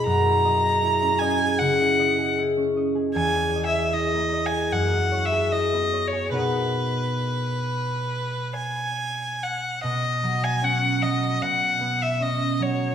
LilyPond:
<<
  \new Staff \with { instrumentName = "Violin" } { \time 4/4 \key b \major \tempo 4 = 76 ais''4. gis''8 fis''4 r4 | \tuplet 3/2 { gis''4 e''8 dis''4 gis''8 fis''4 e''8 dis''4 cis''8 } | b'2~ b'8 gis''4 fis''8 | dis''8. gis''16 fis''8 dis''8 fis''8. e''16 dis''8 cis''8 | }
  \new Staff \with { instrumentName = "Harp" } { \time 4/4 \key b \major <fis, ais e' gis' dis''>16 e'16 dis''16 gis'16 e'16 cis'16 dis''16 gis'16 cis16 e'16 dis''16 gis'16 e'16 cis'16 dis''16 gis'16 | e,16 e'16 dis''16 gis'16 e'16 ais16 dis''16 gis'16 fis,16 e'16 cis''16 gis'16 e'16 b16 cis''16 gis'16 | <b, b dis' fis' ais'>1 | b,8 fis8 cis'8 fis8 b,8 b8 cis'8 fis8 | }
>>